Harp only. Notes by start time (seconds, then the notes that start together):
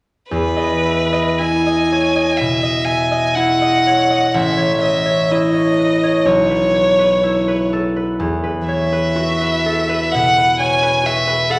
0.31 E2
0.57 D#5
0.85 E5
1.13 D#5
1.40 E4
1.66 D#5
1.92 C#5
2.16 D#5
2.41 B2
2.63 D#5
2.87 E5
3.11 D#5
3.36 E4
3.62 D#5
3.87 C#5
4.10 D#5
4.34 A1
4.57 C#5
4.83 D#5
5.06 C#5
5.31 E4
5.53 C#5
5.79 B4
6.03 C#5
6.25 B1
6.50 B4
6.74 C#5
6.99 B4
7.23 E4
7.48 B4
7.73 A4
7.96 B4
8.20 E2
8.44 B4
8.69 C#5
8.93 B4
9.16 F#4
9.41 B4
9.66 A4
9.89 B4
10.15 B2
10.38 B4
10.60 C#5
10.83 B4
11.04 F#4
11.27 B4
11.50 A4